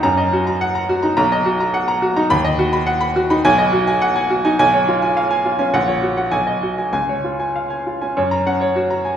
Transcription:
0.03 F#2 A#5
0.17 D#5
0.33 F#4
0.47 A#5
0.61 F#5
0.75 A#5
0.89 F#4
1.03 D#4 A#5
1.17 B1 A#5
1.32 D#5
1.46 F#4
1.60 A#5
1.74 F#5
1.88 A#5
2.02 F#4
2.16 D#4 A#5
2.30 D#2 B5
2.45 D#5
2.59 F#4
2.73 B5
2.86 F#5
3.01 B5
3.16 F#4
3.30 D#4 B5
3.45 B1 G#5
3.58 D#5
3.73 F#4
3.87 G#5
4.01 F#5
4.16 G#5
4.30 F#4
4.45 D#4 G#5
4.59 B1 G#5
4.73 C#5
4.88 F4
5.02 G#5
5.17 F5
5.31 G#5
5.46 F4
5.59 C#4 G#5
5.74 A#1 F#5
5.88 C#5
6.02 F#4
6.17 F#5
6.31 B1 G#5
6.47 D#5
6.63 F#4
6.78 G#5
6.93 C#2 G#5
7.09 C#5
7.24 F4
7.40 G#5
7.56 F5
7.70 G#5
7.87 F4
8.01 C#4 G#5
8.17 F#2 C#5
8.31 A#5
8.47 C#4 F#5
8.61 C#5
8.76 F#4
8.90 A#5
9.05 G#5

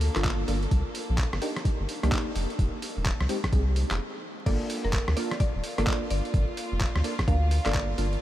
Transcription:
Already playing: A#3 A4
0.01 open hi-hat
0.16 G1 A#3 D4 F4 A4, cross-stick, clap, closed hi-hat
0.25 kick, clap, closed hi-hat
0.48 G1 A#3 D4 F4 A4, open hi-hat
0.63 closed hi-hat
0.71 C2, kick, closed hi-hat
0.95 open hi-hat
1.10 A#1
1.18 kick, clap, closed hi-hat
1.33 G1, cross-stick
1.42 A#3 D4 D#4 G4, open hi-hat
1.56 cross-stick, closed hi-hat
1.65 kick, closed hi-hat
1.80 G1
1.89 open hi-hat
2.03 C2 A#3 D4 D#4 G4, cross-stick, closed hi-hat
2.12 kick, clap, closed hi-hat
2.35 F1, open hi-hat
2.50 closed hi-hat
2.59 F1, kick, closed hi-hat
2.82 open hi-hat
2.97 D#1
3.06 kick, clap, closed hi-hat
3.20 C2, cross-stick
3.29 G#3 C4 D#4 G4, open hi-hat
3.44 kick, cross-stick, closed hi-hat
3.53 C2 G#3 C4 D#4 G#4, kick, closed hi-hat
3.76 open hi-hat
3.91 F1, cross-stick, clap, closed hi-hat
4.46 G1 A#3 D4 F4 A4 D5 F5, kick, closed hi-hat, crash
4.70 open hi-hat
4.84 F1 A#4
4.93 kick, clap, closed hi-hat
5.08 D2, cross-stick
5.17 A#3 D4 F4 A4 D5, open hi-hat
5.31 cross-stick, closed hi-hat
5.40 D5, kick, closed hi-hat
5.55 D1
5.64 open hi-hat
5.78 G1 A#3 D4 F4 A4 D5, cross-stick, closed hi-hat
5.87 kick, clap, closed hi-hat
6.10 G1 D5, open hi-hat
6.25 closed hi-hat
6.34 G1, kick, closed hi-hat
6.57 open hi-hat
6.72 F1
6.81 kick, clap, closed hi-hat
6.96 D2, cross-stick
7.04 A#3 D4 F4 A4, open hi-hat
7.19 kick, cross-stick, closed hi-hat
7.28 D2 A#3 D4 F4 A#4 F5, kick, closed hi-hat
7.51 open hi-hat
7.66 G1 A#3 D4 F4 A4 D5, cross-stick, clap, closed hi-hat
7.75 kick, clap, closed hi-hat
7.98 G1 A#3 D4 F4 A4, open hi-hat
8.13 closed hi-hat

